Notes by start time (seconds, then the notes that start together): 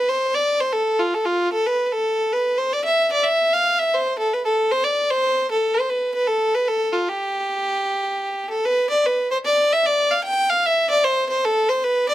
Already playing: B4
0.09 C5
0.34 D5
0.61 C5
0.73 A4
0.99 F4
1.14 A4
1.26 F4
1.53 A4
1.66 B4
1.86 B4
1.92 A4
2.32 B4
2.58 C5
2.73 D5
2.84 E5
3.12 D5
3.23 E5
3.53 F5
3.79 E5
3.94 C5
4.19 A4
4.33 B4
4.45 A4
4.71 C5
4.84 D5
5.11 C5
5.51 A4
5.74 C5
5.89 B4
6.14 B4
6.27 A4
6.54 B4
6.68 A4
6.93 F4
7.09 G4
8.50 A4
8.65 B4
8.90 D5
9.06 B4
9.31 C5
9.45 D5
9.73 E5
9.86 D5
10.11 F5
10.24 G5
10.50 F5
10.66 E5
10.90 D5
11.04 C5
11.29 C5
11.45 A4
11.69 C5
11.84 B4
12.09 D5